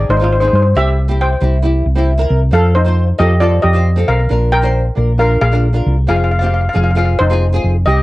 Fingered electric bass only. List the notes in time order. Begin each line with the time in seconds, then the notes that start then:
0.09 G#1
0.53 G2
0.75 C2
1.42 C2
1.86 C2
2.30 C2
2.53 F2
3.20 F2
3.64 F2
4.08 B1
4.31 A#1
4.97 A#1
5.42 A#1
5.86 C2
6.08 F1
6.75 F1
7.20 F1
7.64 F1
7.87 C2